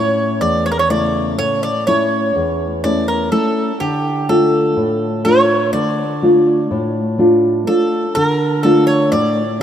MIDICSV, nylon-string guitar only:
0, 0, Header, 1, 2, 480
1, 0, Start_track
1, 0, Key_signature, -1, "minor"
1, 0, Tempo, 966184
1, 1888, Time_signature, 9, 3, 24, 8
1, 4783, End_track
2, 0, Start_track
2, 0, Title_t, "Nylon-string guitar"
2, 0, Program_c, 0, 24
2, 0, Note_on_c, 0, 45, 69
2, 0, Note_on_c, 0, 57, 47
2, 0, Note_on_c, 0, 61, 45
2, 0, Note_on_c, 0, 64, 54
2, 192, Note_off_c, 0, 45, 0
2, 204, Note_on_c, 0, 40, 63
2, 350, Note_off_c, 0, 57, 0
2, 352, Note_off_c, 0, 61, 0
2, 352, Note_off_c, 0, 64, 0
2, 445, Note_on_c, 0, 57, 45
2, 447, Note_on_c, 0, 49, 41
2, 450, Note_on_c, 0, 64, 52
2, 672, Note_off_c, 0, 40, 0
2, 689, Note_on_c, 0, 45, 65
2, 831, Note_off_c, 0, 57, 0
2, 832, Note_off_c, 0, 49, 0
2, 833, Note_off_c, 0, 64, 0
2, 931, Note_on_c, 0, 57, 51
2, 933, Note_on_c, 0, 61, 43
2, 936, Note_on_c, 0, 64, 54
2, 1154, Note_off_c, 0, 45, 0
2, 1170, Note_on_c, 0, 40, 70
2, 1314, Note_off_c, 0, 57, 0
2, 1315, Note_off_c, 0, 61, 0
2, 1317, Note_off_c, 0, 64, 0
2, 1413, Note_on_c, 0, 57, 51
2, 1416, Note_on_c, 0, 61, 45
2, 1417, Note_on_c, 0, 64, 53
2, 1635, Note_off_c, 0, 40, 0
2, 1643, Note_off_c, 0, 61, 0
2, 1644, Note_off_c, 0, 57, 0
2, 1646, Note_off_c, 0, 64, 0
2, 1650, Note_on_c, 0, 57, 54
2, 1650, Note_on_c, 0, 61, 48
2, 1652, Note_on_c, 0, 64, 55
2, 1841, Note_off_c, 0, 57, 0
2, 1841, Note_off_c, 0, 61, 0
2, 1843, Note_off_c, 0, 64, 0
2, 1892, Note_on_c, 0, 50, 66
2, 2130, Note_on_c, 0, 57, 48
2, 2133, Note_on_c, 0, 62, 43
2, 2134, Note_on_c, 0, 65, 55
2, 2356, Note_off_c, 0, 50, 0
2, 2367, Note_on_c, 0, 45, 65
2, 2513, Note_off_c, 0, 57, 0
2, 2515, Note_off_c, 0, 62, 0
2, 2516, Note_off_c, 0, 65, 0
2, 2607, Note_on_c, 0, 57, 47
2, 2610, Note_on_c, 0, 62, 42
2, 2613, Note_on_c, 0, 65, 51
2, 2833, Note_off_c, 0, 45, 0
2, 2848, Note_on_c, 0, 50, 64
2, 2992, Note_off_c, 0, 57, 0
2, 2993, Note_off_c, 0, 62, 0
2, 2995, Note_off_c, 0, 65, 0
2, 3091, Note_on_c, 0, 57, 50
2, 3093, Note_on_c, 0, 62, 43
2, 3096, Note_on_c, 0, 65, 55
2, 3314, Note_off_c, 0, 50, 0
2, 3333, Note_on_c, 0, 45, 69
2, 3474, Note_off_c, 0, 57, 0
2, 3475, Note_off_c, 0, 62, 0
2, 3476, Note_off_c, 0, 65, 0
2, 3568, Note_on_c, 0, 57, 46
2, 3571, Note_on_c, 0, 62, 45
2, 3574, Note_on_c, 0, 65, 54
2, 3796, Note_off_c, 0, 45, 0
2, 3806, Note_off_c, 0, 57, 0
2, 3808, Note_off_c, 0, 62, 0
2, 3810, Note_off_c, 0, 65, 0
2, 3812, Note_on_c, 0, 57, 49
2, 3814, Note_on_c, 0, 62, 48
2, 3816, Note_on_c, 0, 65, 57
2, 4002, Note_off_c, 0, 57, 0
2, 4003, Note_off_c, 0, 62, 0
2, 4005, Note_off_c, 0, 65, 0
2, 4056, Note_on_c, 0, 50, 65
2, 4293, Note_on_c, 0, 57, 49
2, 4295, Note_on_c, 0, 62, 45
2, 4298, Note_on_c, 0, 65, 55
2, 4518, Note_off_c, 0, 50, 0
2, 4532, Note_on_c, 0, 45, 68
2, 4675, Note_off_c, 0, 57, 0
2, 4676, Note_off_c, 0, 62, 0
2, 4678, Note_off_c, 0, 65, 0
2, 4783, Note_off_c, 0, 45, 0
2, 4783, End_track
0, 0, End_of_file